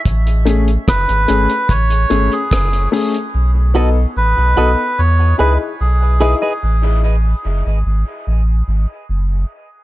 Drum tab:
HH |xxxxxxxxxxxxxxox|----------------|----------------|
SD |----r-------r---|----------------|----------------|
BD |o---o---o---o---|----------------|----------------|